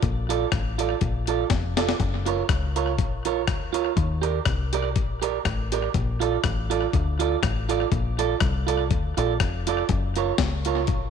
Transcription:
0.02 fingered electric bass A#1, kick, closed hi-hat
0.29 clean electric guitar F4 A4 D5, closed hi-hat
0.52 fingered electric bass A1, kick, cross-stick, closed hi-hat
0.78 clean electric guitar F4 A4 D5, closed hi-hat
1.01 fingered electric bass A#1, kick, closed hi-hat
1.27 clean electric guitar F4 A4 D5, closed hi-hat
1.50 fingered electric bass F1, kick, snare, closed hi-hat
1.77 clean electric guitar F4 A4 D5, snare, closed hi-hat
1.89 snare
2.00 fingered electric bass F#1, kick, closed hi-hat
2.26 clean electric guitar F4 A#4 C#5, closed hi-hat
2.49 fingered electric bass C#2, kick, cross-stick, closed hi-hat
2.76 clean electric guitar F4 A#4 C#5, closed hi-hat
2.99 fingered electric bass A#1, kick, closed hi-hat
3.25 clean electric guitar F4 A#4 C#5, closed hi-hat
3.47 fingered electric bass D2, kick, cross-stick, closed hi-hat
3.73 clean electric guitar F4 A#4 C#5, closed hi-hat
3.97 fingered electric bass D#2, kick, closed hi-hat
4.22 clean electric guitar G4 A#4 D5, closed hi-hat
4.45 fingered electric bass C2, kick, cross-stick, closed hi-hat
4.73 clean electric guitar G4 A#4 D5, closed hi-hat
4.96 fingered electric bass A#1, kick, closed hi-hat
5.22 clean electric guitar G4 A#4 D5, closed hi-hat
5.45 fingered electric bass A1, muted clean electric guitar stroke, kick, cross-stick, closed hi-hat
5.72 clean electric guitar G4 A#4 D5, closed hi-hat
5.94 fingered electric bass A#1, kick, closed hi-hat
6.20 clean electric guitar F4 A4 D5, closed hi-hat
6.44 fingered electric bass A1, kick, cross-stick, closed hi-hat
6.70 clean electric guitar F4 A4 D5, closed hi-hat
6.93 fingered electric bass D2, muted clean electric guitar stroke, kick, closed hi-hat
7.19 clean electric guitar F4 A4 D5, closed hi-hat
7.43 fingered electric bass A1, kick, cross-stick, closed hi-hat
7.69 clean electric guitar F4 A4 D5, closed hi-hat
7.92 fingered electric bass A#1, kick, closed hi-hat
8.19 clean electric guitar F4 A4 D5, closed hi-hat
8.40 fingered electric bass C2, kick, cross-stick, closed hi-hat
8.67 clean electric guitar F4 A4 D5, closed hi-hat
8.91 fingered electric bass D2, kick, closed hi-hat
9.17 fingered electric bass A#1, clean electric guitar F4 A4 D5, closed hi-hat
9.40 fingered electric bass F1, kick, cross-stick, closed hi-hat
9.67 clean electric guitar F4 A4 D5, closed hi-hat
9.89 fingered electric bass F#1, kick, closed hi-hat
10.16 clean electric guitar F4 A#4 C#5, closed hi-hat
10.38 fingered electric bass C#2, kick, snare, closed hi-hat
10.65 clean electric guitar F4 A#4 C#5, closed hi-hat
10.87 fingered electric bass A#1, kick, closed hi-hat

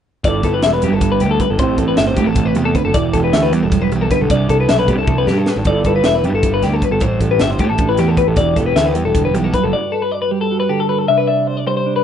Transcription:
0.24 picked electric bass G1, clean electric guitar G2 G3 B3 E4 A4 D5, kick, closed hi-hat
0.43 picked electric bass G1, clean electric guitar A4 B4, kick, closed hi-hat
0.54 clean electric guitar B4
0.62 picked electric bass E1, clean electric guitar E5, snare, closed hi-hat
0.73 clean electric guitar B4
0.82 picked electric bass G2, clean electric guitar G3 G4, closed hi-hat
0.93 picked electric bass G1, clean electric guitar A4
1.01 kick, closed hi-hat
1.12 clean electric guitar B4
1.20 picked electric bass D2, clean electric guitar G4, closed hi-hat
1.31 clean electric guitar A4
1.40 clean electric guitar G2 B4, kick, closed hi-hat
1.50 picked electric bass G1, clean electric guitar A4
1.59 picked electric bass A1, clean electric guitar A2 A3 C4 E4 G4 C5, kick, closed hi-hat
1.78 picked electric bass A1, clean electric guitar G4 A4, kick, closed hi-hat
1.88 clean electric guitar B4
1.97 picked electric bass G1, clean electric guitar E5, snare, closed hi-hat
2.07 clean electric guitar C5
2.16 picked electric bass A2, clean electric guitar A3 G4, kick, closed hi-hat
2.27 picked electric bass A1, clean electric guitar A4
2.35 clean electric guitar B2, kick, closed hi-hat
2.46 clean electric guitar B4
2.55 picked electric bass E2, clean electric guitar C3 G4, closed hi-hat
2.65 clean electric guitar A4
2.75 clean electric guitar D3 B4, kick, closed hi-hat
2.85 picked electric bass F#1, clean electric guitar A4
2.94 picked electric bass E1, clean electric guitar E3 E4 D5, kick, closed hi-hat
3.13 picked electric bass E1, clean electric guitar G4 A4, kick, closed hi-hat
3.24 clean electric guitar B4
3.33 picked electric bass D2, clean electric guitar E5, snare, closed hi-hat
3.43 clean electric guitar B4
3.53 picked electric bass E2, clean electric guitar G3 G4, closed hi-hat
3.63 picked electric bass E1, clean electric guitar A4
3.72 clean electric guitar F#3, kick, snare, closed hi-hat
3.82 clean electric guitar B4
3.92 picked electric bass B1, clean electric guitar E3 G4, closed hi-hat
4.01 clean electric guitar A4
4.11 clean electric guitar D3 B4, kick, snare, closed hi-hat
4.21 picked electric bass B1, clean electric guitar A4
4.30 picked electric bass C2, clean electric guitar C3 D4 D5, kick, closed hi-hat
4.49 picked electric bass C2, clean electric guitar A4, kick, closed hi-hat
4.60 clean electric guitar B4
4.69 picked electric bass B1, clean electric guitar E5, snare, closed hi-hat
4.79 clean electric guitar B4
4.88 picked electric bass C3, clean electric guitar G3 G4, kick, closed hi-hat
4.98 picked electric bass C2, clean electric guitar A4
5.07 clean electric guitar C3, kick, high tom
5.18 clean electric guitar B4
5.27 picked electric bass G2, clean electric guitar B2 G4, snare
5.38 clean electric guitar A4
5.46 clean electric guitar A2 B4, snare
5.56 picked electric bass G#1, clean electric guitar A4
5.65 picked electric bass G1, clean electric guitar G2 G3 B3 E4 D5, kick, closed hi-hat
5.69 clean electric guitar A4
5.84 picked electric bass G1, clean electric guitar A4 B4, kick, closed hi-hat
5.96 clean electric guitar B4
6.04 picked electric bass E1, clean electric guitar E5, snare, closed hi-hat
6.15 clean electric guitar B4
6.23 picked electric bass G2, clean electric guitar G3 G4, closed hi-hat
6.33 picked electric bass G1, clean electric guitar A4
6.43 kick, closed hi-hat
6.54 clean electric guitar B4
6.62 picked electric bass D2, clean electric guitar G4, snare, closed hi-hat
6.74 clean electric guitar A4
6.82 clean electric guitar G2 B4, kick, closed hi-hat
6.91 picked electric bass G1, clean electric guitar A4
7.00 picked electric bass A1, clean electric guitar A2 E4 C5, kick, closed hi-hat
7.21 picked electric bass A1, clean electric guitar G4 A4, kick, closed hi-hat
7.31 clean electric guitar B4
7.39 picked electric bass G1, clean electric guitar E5, snare, closed hi-hat
7.51 clean electric guitar C5
7.59 picked electric bass A2, clean electric guitar A3 G4, kick, closed hi-hat
7.70 picked electric bass A1, clean electric guitar A4
7.78 clean electric guitar D4, kick, closed hi-hat
7.89 clean electric guitar E4 B4
7.97 picked electric bass E2, clean electric guitar E3 G4, snare, closed hi-hat
8.08 clean electric guitar A4
8.17 clean electric guitar E4 B4, kick, closed hi-hat
8.27 picked electric bass A1, clean electric guitar A4
8.36 picked electric bass E1, clean electric guitar E3 E4 D5, kick, closed hi-hat
8.56 picked electric bass E1, clean electric guitar G4 A4, kick, closed hi-hat
8.66 clean electric guitar B4
8.75 picked electric bass D2, clean electric guitar E5, snare, closed hi-hat
8.86 clean electric guitar B4
8.95 picked electric bass E2, clean electric guitar G3 G4, closed hi-hat
9.05 picked electric bass E1, clean electric guitar A4
9.15 clean electric guitar D3, kick, closed hi-hat
9.25 clean electric guitar B4
9.34 picked electric bass B1, clean electric guitar E3 G4, closed hi-hat
9.44 clean electric guitar A4
9.54 clean electric guitar F#3 B4, kick, closed hi-hat
9.64 picked electric bass F#1, clean electric guitar A4
9.73 clean electric guitar G2 F#4 D5
9.92 clean electric guitar A4 B4
10.02 clean electric guitar B4
10.11 clean electric guitar D5
10.22 clean electric guitar B4
10.31 clean electric guitar G3 G4
10.41 clean electric guitar A4
10.51 clean electric guitar F#4
10.60 clean electric guitar B4
10.69 clean electric guitar D3 G4 A4
10.80 clean electric guitar A4
10.89 clean electric guitar F#4 B4
10.99 clean electric guitar A4
11.08 clean electric guitar C3 D4 E5
11.18 clean electric guitar B4
11.28 clean electric guitar D5 E5
11.47 clean electric guitar C5
11.57 clean electric guitar D5
11.67 clean electric guitar G3 C5
11.77 clean electric guitar C5
11.86 clean electric guitar D4
11.96 clean electric guitar B4

